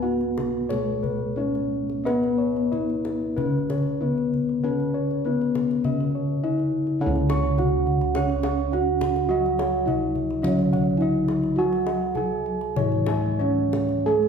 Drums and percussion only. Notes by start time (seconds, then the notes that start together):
0.21 kendang slap
0.38 kendang high, kendang low
0.70 kendang low
1.04 kendang low
1.55 kendang slap
1.90 kendang slap
2.07 kendang high
2.23 kendang slap
2.56 kendang slap
2.73 kendang low
2.90 kendang slap
3.05 kendang high
3.38 kendang low
3.70 kendang high, kendang low
4.18 kendang slap
4.34 kendang low
4.49 kendang slap
4.80 kendang slap
5.11 kendang slap
5.41 kendang slap
5.55 kendang high, kendang low
5.71 kendang slap
5.84 kendang low
6.00 kendang slap
6.60 kendang slap
6.87 kendang slap
7.16 kendang slap
7.30 kendang high
7.58 kendang slap, kendang low
7.87 kendang slap
8.01 kendang slap
8.15 kendang slap, kendang high, kendang low
8.30 kendang slap
8.43 kendang slap, kendang high
8.73 kendang slap
9.01 kendang slap, kendang high, kendang low
9.16 kendang slap
9.46 kendang slap
9.59 kendang high
9.88 kendang slap, kendang low
10.16 kendang slap, kendang low
10.31 kendang slap
10.44 kendang slap, kendang low
10.59 kendang slap
10.73 kendang slap, kendang low
11.01 kendang slap
11.28 kendang slap, kendang high
11.43 kendang slap
11.73 kendang slap
11.87 kendang high
12.15 kendang slap, kendang low
12.46 kendang slap
12.61 kendang slap
12.76 kendang slap, kendang high, kendang low
12.92 kendang slap
13.06 kendang slap, kendang high
13.39 kendang slap
13.73 kendang slap, kendang high, kendang low
13.89 kendang slap
14.23 kendang slap